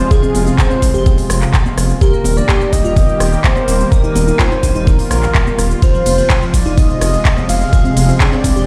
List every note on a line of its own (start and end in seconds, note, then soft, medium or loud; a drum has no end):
0.00 1.98 C3 medium
0.00 1.97 F3 medium
0.00 1.98 G#3 medium
0.00 1.98 F4 medium
0.00 0.11 C5 loud
0.11 0.18 G#4 loud
0.11 0.55 G#4 loud
0.11 kick loud
0.11 shaker soft
0.23 0.30 C4 medium
0.23 shaker soft
0.35 0.51 F1 loud
0.35 open hi-hat loud
0.35 high conga medium
0.35 shaker medium
0.47 0.54 C4 medium
0.47 shaker soft
0.58 0.66 G#4 loud
0.58 1.03 C5 medium
0.58 kick loud
0.58 clap loud
0.58 shaker soft
0.70 0.78 C4 medium
0.70 cowbell medium
0.70 shaker soft
0.82 0.91 C2 loud
0.82 0.90 C4 medium
0.82 kick medium
0.82 open hi-hat loud
0.82 shaker medium
0.94 1.10 F1 medium
0.94 1.92 G4 loud
0.94 shaker soft
1.06 kick loud
1.06 high conga medium
1.06 shaker soft
1.18 open hi-hat medium
1.18 shaker soft
1.30 1.46 F1 medium
1.30 cross-stick medium
1.30 open hi-hat loud
1.30 cowbell medium
1.30 shaker medium
1.42 clap soft
1.42 shaker soft
1.54 kick loud
1.54 clap loud
1.54 shaker soft
1.66 high conga medium
1.66 shaker soft
1.77 1.94 F1 loud
1.77 cross-stick medium
1.77 open hi-hat loud
1.77 shaker medium
1.90 shaker soft
2.01 5.79 D#3 medium
2.01 5.79 G3 medium
2.01 5.79 A#3 medium
2.01 2.09 G4 loud
2.01 3.90 G4 medium
2.01 2.38 A#4 loud
2.01 kick loud
2.01 shaker soft
2.13 2.21 A#3 medium
2.13 shaker soft
2.24 2.41 D#1 loud
2.24 open hi-hat loud
2.24 high conga medium
2.24 shaker medium
2.37 2.44 A#3 medium
2.37 2.72 D5 loud
2.37 shaker soft
2.49 2.56 G4 medium
2.49 kick loud
2.49 clap loud
2.49 shaker soft
2.61 2.68 A#3 medium
2.61 shaker soft
2.73 2.81 A#1 loud
2.73 2.80 A#3 medium
2.73 2.95 D#5 loud
2.73 kick medium
2.73 open hi-hat loud
2.73 shaker medium
2.84 3.01 D#1 medium
2.84 3.82 F4 loud
2.84 shaker soft
2.96 3.41 D#5 loud
2.96 kick loud
2.96 open hi-hat medium
2.96 high conga medium
2.96 shaker soft
3.09 shaker soft
3.20 3.37 D#1 medium
3.20 cross-stick medium
3.20 open hi-hat loud
3.20 shaker medium
3.33 shaker soft
3.44 3.88 C5 loud
3.44 kick loud
3.44 clap loud
3.44 shaker soft
3.56 cowbell medium
3.56 high conga medium
3.56 shaker soft
3.68 3.84 D#1 loud
3.68 open hi-hat loud
3.68 shaker medium
3.80 shaker soft
3.92 7.69 F4 medium
3.92 4.41 A#4 loud
3.92 3.99 A#4 loud
3.92 kick loud
3.92 shaker soft
4.04 4.11 D#4 medium
4.04 shaker soft
4.16 4.32 D#1 loud
4.16 open hi-hat loud
4.16 high conga medium
4.16 shaker medium
4.28 4.35 D#4 medium
4.28 shaker soft
4.39 4.47 F4 medium
4.39 4.88 C5 loud
4.39 kick loud
4.39 clap loud
4.39 shaker medium
4.51 4.59 D#4 medium
4.51 cowbell medium
4.51 shaker soft
4.63 4.71 A#1 loud
4.63 4.71 D#4 medium
4.63 kick medium
4.63 open hi-hat loud
4.63 shaker medium
4.75 4.91 D#1 medium
4.75 5.73 D#4 loud
4.75 shaker soft
4.87 5.10 A#4 medium
4.87 kick loud
4.87 high conga medium
4.87 shaker soft
4.99 open hi-hat medium
4.99 shaker soft
5.11 5.27 A#1 medium
5.11 5.55 A#4 medium
5.11 cross-stick medium
5.11 open hi-hat loud
5.11 cowbell medium
5.11 shaker medium
5.23 clap soft
5.23 shaker soft
5.35 kick loud
5.35 clap loud
5.35 shaker soft
5.47 high conga loud
5.47 shaker soft
5.58 5.75 D#1 medium
5.58 cross-stick medium
5.58 open hi-hat loud
5.58 shaker medium
5.71 shaker soft
5.82 8.66 C3 medium
5.82 8.66 F3 medium
5.82 8.66 G#3 medium
5.82 5.90 F4 loud
5.82 6.55 C5 loud
5.82 kick loud
5.82 ride medium
5.82 shaker soft
5.94 6.01 F3 medium
5.94 shaker soft
6.06 6.22 F1 loud
6.06 open hi-hat loud
6.06 ride medium
6.06 high conga medium
6.06 shaker medium
6.18 6.25 F3 medium
6.18 shaker soft
6.30 6.37 F4 loud
6.30 kick loud
6.30 clap loud
6.30 ride medium
6.30 shaker soft
6.42 6.49 F3 medium
6.42 shaker soft
6.54 6.62 C2 loud
6.54 6.61 F3 medium
6.54 6.79 D5 loud
6.54 kick medium
6.54 open hi-hat loud
6.54 ride medium
6.54 shaker medium
6.66 6.82 F1 medium
6.66 7.63 D#4 loud
6.66 shaker soft
6.77 7.49 D#5 loud
6.77 kick loud
6.77 open hi-hat medium
6.77 ride medium
6.77 high conga medium
6.77 shaker soft
6.90 shaker soft
7.01 7.18 F1 medium
7.01 cross-stick medium
7.01 open hi-hat loud
7.01 ride medium
7.01 shaker medium
7.14 shaker soft
7.25 kick loud
7.25 clap loud
7.25 ride medium
7.25 shaker soft
7.37 cowbell medium
7.37 high conga medium
7.37 shaker soft
7.49 7.65 F1 loud
7.49 8.16 F5 loud
7.49 open hi-hat loud
7.49 ride medium
7.49 shaker medium
7.61 shaker soft
7.73 8.66 G4 medium
7.73 7.80 G#4 loud
7.73 kick loud
7.73 ride medium
7.73 shaker soft
7.85 7.92 C4 medium
7.85 shaker soft
7.97 8.13 F1 loud
7.97 open hi-hat loud
7.97 ride medium
7.97 high conga medium
7.97 shaker medium
8.08 8.16 C4 medium
8.08 shaker soft
8.20 8.28 G#4 loud
8.20 8.66 D5 loud
8.20 kick loud
8.20 clap loud
8.20 ride medium
8.20 shaker soft
8.32 8.40 C4 medium
8.32 cowbell medium
8.32 shaker soft
8.44 8.52 C2 loud
8.44 8.51 C4 medium
8.44 kick medium
8.44 open hi-hat loud
8.44 ride medium
8.44 shaker medium
8.56 8.66 F1 medium
8.56 8.66 G4 loud
8.56 shaker soft